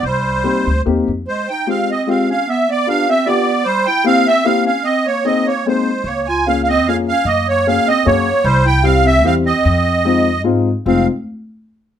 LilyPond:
<<
  \new Staff \with { instrumentName = "Accordion" } { \time 3/4 \key c \minor \tempo 4 = 150 c''2 r4 | \key f \minor c''8 g''8 f''8 ees''8 f''8 f''8 | e''8 d''8 f''8 e''8 d''4 | c''8 g''8 f''8 e''8 f''8 f''8 |
ees''8 des''8 ees''8 des''8 c''4 | des''8 aes''8 f''16. f''32 ees''8 f''8 f''8 | ees''8 des''8 f''8 ees''8 des''4 | c''8 g''8 f''8 e''8 f''8 ees''8~ |
ees''2 r4 | f''8 r2 r8 | }
  \new Staff \with { instrumentName = "Upright piano" } { \time 3/4 \key c \minor r4 <bes c' ees' g'>8 r8 <bes c' ees' g'>8 r8 | \key f \minor r4 <aes c' f' g'>8 r8 <aes c' f' g'>8 r8 | r4 <b d' f' g'>8 r8 <b d' f' g'>8 r8 | r4 <bes c' e' g'>8 r8 <bes c' e' g'>8 r8 |
r4 <bes c' ees' aes'>8 r8 <bes c' ees' aes'>8 r8 | r4 <bes des' f' aes'>8 r8 <bes des' f' aes'>8 r8 | r4 <bes des' ges' aes'>8 r8 <bes des' ges' aes'>8 r8 | r4 <g c' e' g'>8 r8 <g c' e' g'>8 r8 |
r4 <aes c' ees' f'>8 r8 <aes c' ees' f'>8 r8 | <aes c' ees' f'>8 r2 r8 | }
  \new Staff \with { instrumentName = "Clarinet" } { \time 3/4 \key c \minor g2 r4 | \key f \minor aes8 ees'8 c'8 c'8 c'8 des'8 | b8 b8 d'8 c'8 b4 | g8 e'8 c'8 c'8 c'8 des'8 |
c'8 bes8 c'8 bes8 aes4 | bes8 f'8 des'16. des'32 c'8 des'8 des'8 | bes8 bes8 des'8 c'8 bes4 | g8 e'8 c'8 c'8 c'8 c'8~ |
c'2 r4 | c'8 r2 r8 | }
  \new Staff \with { instrumentName = "Upright bass" } { \clef bass \time 3/4 \key c \minor c,4. d,8 ees,8 f,8 | \key f \minor r2. | r2. | r2. |
r2. | des,2 f,4 | ges,2 ges,4 | c,2 e,4 |
f,2 aes,4 | f,,8 r2 r8 | }
>>